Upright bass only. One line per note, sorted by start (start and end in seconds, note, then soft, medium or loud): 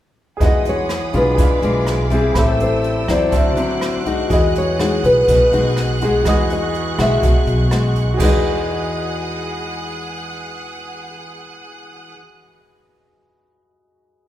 0.40 1.09 E2 medium
1.13 1.36 B1 medium
1.38 1.64 E2 medium
1.62 2.31 B1 medium
2.35 3.04 A1 medium
3.08 3.31 E2 medium
3.33 3.56 D2 medium
3.56 4.26 A1 medium
4.30 4.99 E2 loud
5.04 5.26 B1 medium
5.28 5.39 B1 medium
5.52 6.21 B1 medium
6.25 6.94 E2 medium
6.98 7.21 B1 medium
7.23 7.34 B1 medium
7.46 8.15 B1 medium
8.20 12.12 E2 medium